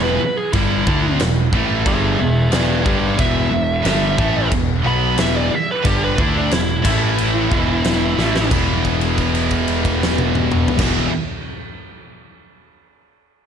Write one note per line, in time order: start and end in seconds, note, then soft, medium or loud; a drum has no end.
0.00 0.18 E1 medium
0.00 0.19 E2 loud
0.00 0.20 B2 loud
0.00 0.20 E3 loud
0.00 0.36 B4 medium
0.21 muted picked electric bass stroke soft
0.21 muted distorted electric guitar stroke medium
0.37 0.53 G#4 medium
0.53 0.84 G1 medium
0.53 0.86 G2 loud
0.53 0.86 D3 loud
0.53 0.86 G3 loud
0.53 1.18 E4 loud
0.53 kick loud
0.53 crash medium
0.87 1.18 D2 loud
0.87 1.19 D3 medium
0.87 1.19 A3 loud
0.87 1.20 D4 medium
0.87 kick loud
1.20 1.51 E1 medium
1.20 1.47 E2 medium
1.20 1.47 B2 medium
1.20 snare loud
1.20 crash medium
1.53 1.84 A1 loud
1.53 1.86 A2 medium
1.53 1.86 E3 loud
1.53 1.86 A3 loud
1.53 kick loud
1.86 2.17 G1 loud
1.86 2.19 G2 medium
1.86 2.19 D3 loud
1.86 2.19 G3 loud
1.86 2.19 G#4 medium
1.86 2.19 E5 medium
1.86 kick loud
1.86 crash medium
2.19 2.50 E1 loud
2.19 2.46 E2 medium
2.19 2.47 B2 medium
2.19 2.51 G#4 medium
2.19 2.52 E5 loud
2.51 2.84 E1 loud
2.51 2.83 E2 loud
2.51 2.84 B2 loud
2.51 2.85 E3 loud
2.51 2.83 B4 medium
2.51 2.85 D5 medium
2.51 snare loud
2.51 crash medium
2.84 3.17 G1 loud
2.84 3.17 G2 medium
2.84 3.16 D3 loud
2.84 3.17 G3 loud
2.84 3.17 B4 medium
2.84 3.18 D5 loud
2.84 kick loud
3.17 3.50 E1 medium
3.17 3.49 E2 loud
3.17 3.50 B2 loud
3.17 3.51 E3 loud
3.17 4.49 E5 loud
3.17 kick loud
3.17 crash medium
3.50 3.83 E1 loud
3.50 3.78 E2 medium
3.50 3.79 B2 medium
3.82 4.16 G1 loud
3.82 4.16 G2 loud
3.82 4.17 D3 medium
3.82 4.17 G3 loud
3.82 snare loud
3.82 crash medium
4.17 4.50 A1 loud
4.17 4.50 A2 medium
4.17 4.51 E3 loud
4.17 4.51 A3 loud
4.17 kick loud
4.50 4.83 E1 medium
4.50 4.78 E2 medium
4.50 4.78 B2 medium
4.50 kick loud
4.50 crash medium
4.84 5.16 B1 loud
4.84 5.16 B2 loud
4.84 5.17 F#3 loud
4.84 5.17 B3 loud
4.84 5.19 B5 loud
5.17 5.50 E1 medium
5.17 5.49 E2 loud
5.17 5.50 B2 loud
5.17 5.50 E3 loud
5.17 5.35 E5 medium
5.17 snare loud
5.17 crash medium
5.37 5.54 D5 loud
5.50 muted distorted electric guitar stroke medium
5.50 muted picked electric bass stroke soft
5.54 5.69 E5 loud
5.71 5.86 B4 loud
5.83 6.16 G1 loud
5.83 6.16 G2 loud
5.83 6.16 D3 loud
5.83 6.16 G3 loud
5.83 6.02 G4 medium
5.83 kick loud
5.83 crash medium
6.04 6.19 B4 medium
6.17 6.49 D2 loud
6.17 6.49 D3 medium
6.17 6.50 A3 medium
6.17 6.50 D4 loud
6.17 kick loud
6.21 6.36 E4 loud
6.38 6.52 D4 loud
6.50 6.83 E1 medium
6.50 6.77 E2 medium
6.50 6.77 B2 medium
6.50 6.84 E4 loud
6.50 snare loud
6.50 crash medium
6.83 7.48 A1 loud
6.83 7.49 A2 medium
6.83 7.49 E3 loud
6.83 7.50 A3 loud
6.83 8.48 E4 loud
6.83 kick loud
6.83 crash loud
7.18 crash medium
7.49 8.14 E1 loud
7.49 8.16 E2 loud
7.49 8.16 B2 loud
7.49 8.16 E3 loud
7.49 kick loud
7.84 snare loud
7.84 crash medium
8.16 8.49 A1 loud
8.16 8.49 A2 medium
8.16 8.48 E3 loud
8.16 8.50 A3 loud
8.16 snare medium
8.36 snare loud
8.49 10.66 E1 medium
8.49 10.77 E2 medium
8.49 10.79 B2 loud
8.49 10.77 E3 loud
8.49 10.78 G#3 loud
8.49 10.79 B3 loud
8.49 kick loud
8.49 crash medium
8.54 10.81 E3 loud
8.54 10.81 E4 loud
8.85 kick medium
8.85 crash soft
9.01 crash medium
9.18 kick medium
9.18 crash soft
9.35 crash medium
9.51 kick medium
9.51 crash soft
9.68 crash medium
9.85 kick medium
9.85 crash medium
10.03 snare loud
10.18 high tom loud
10.35 mid tom medium
10.52 mid tom loud
10.68 floor tom loud
10.77 11.07 E1 loud
10.77 11.08 E2 loud
10.77 11.09 B2 loud
10.77 11.08 E3 loud
10.77 11.09 G#3 loud
10.77 11.09 B3 loud
10.77 11.10 E4 loud
10.77 kick loud
10.77 snare loud
10.77 crash loud
10.82 11.10 E3 loud